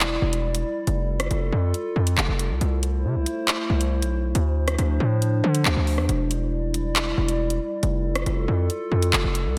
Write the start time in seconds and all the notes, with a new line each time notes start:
Already playing: E1 G3 E4 D5
0.00 clap, closed hi-hat
0.22 E1
0.33 closed hi-hat
0.55 closed hi-hat
0.87 F1 F4 A4, closed hi-hat
1.20 cross-stick, closed hi-hat
1.31 F1, closed hi-hat
1.52 F2
1.74 closed hi-hat
1.96 F2
2.07 closed hi-hat
2.18 F1, clap
2.28 F1
2.39 closed hi-hat
2.50 C2
2.61 C2 A3 E4 C5, closed hi-hat
2.83 closed hi-hat
3.05 C3
3.15 C2
3.26 closed hi-hat
3.48 clap, closed hi-hat
3.70 C2
3.81 closed hi-hat
4.02 B1, closed hi-hat
4.35 D2 F3 D4 C5, closed hi-hat
4.68 cross-stick, closed hi-hat
4.78 D2, closed hi-hat
5.00 A2
5.22 closed hi-hat
5.44 D3
5.55 closed hi-hat
5.65 D2, clap
5.76 D2
5.87 open hi-hat
5.98 E2, cross-stick
6.09 E1 G3 E4 D5, closed hi-hat
6.31 closed hi-hat
6.74 closed hi-hat
6.96 clap, closed hi-hat
7.18 E1
7.28 closed hi-hat
7.50 closed hi-hat
7.83 F1 F4 A4, closed hi-hat
8.15 cross-stick, closed hi-hat
8.26 F1, closed hi-hat
8.48 F2
8.70 closed hi-hat
8.92 F2
9.02 closed hi-hat
9.13 F1, clap
9.24 F1
9.35 closed hi-hat
9.46 C2